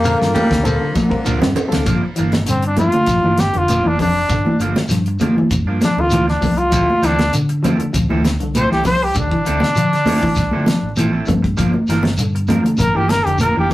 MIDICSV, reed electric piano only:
0, 0, Header, 1, 2, 480
1, 0, Start_track
1, 0, Tempo, 607287
1, 1473, Time_signature, 4, 2, 24, 8
1, 10859, End_track
2, 0, Start_track
2, 0, Title_t, "Reed electric piano"
2, 0, Program_c, 0, 4
2, 32, Note_on_c, 0, 55, 84
2, 34, Note_on_c, 0, 65, 80
2, 35, Note_on_c, 0, 60, 77
2, 42, Note_on_c, 0, 69, 88
2, 260, Note_off_c, 0, 55, 0
2, 261, Note_off_c, 0, 65, 0
2, 262, Note_off_c, 0, 60, 0
2, 265, Note_off_c, 0, 69, 0
2, 499, Note_on_c, 0, 55, 90
2, 500, Note_on_c, 0, 60, 83
2, 507, Note_on_c, 0, 65, 89
2, 512, Note_on_c, 0, 69, 101
2, 679, Note_off_c, 0, 55, 0
2, 679, Note_off_c, 0, 60, 0
2, 683, Note_off_c, 0, 65, 0
2, 685, Note_off_c, 0, 69, 0
2, 863, Note_on_c, 0, 55, 82
2, 868, Note_on_c, 0, 65, 78
2, 871, Note_on_c, 0, 60, 82
2, 874, Note_on_c, 0, 70, 94
2, 1097, Note_off_c, 0, 55, 0
2, 1099, Note_off_c, 0, 65, 0
2, 1101, Note_off_c, 0, 60, 0
2, 1102, Note_off_c, 0, 70, 0
2, 1328, Note_on_c, 0, 60, 74
2, 1330, Note_on_c, 0, 55, 85
2, 1333, Note_on_c, 0, 69, 96
2, 1336, Note_on_c, 0, 65, 80
2, 1459, Note_off_c, 0, 60, 0
2, 1460, Note_off_c, 0, 55, 0
2, 1461, Note_off_c, 0, 69, 0
2, 1462, Note_off_c, 0, 65, 0
2, 10859, End_track
0, 0, End_of_file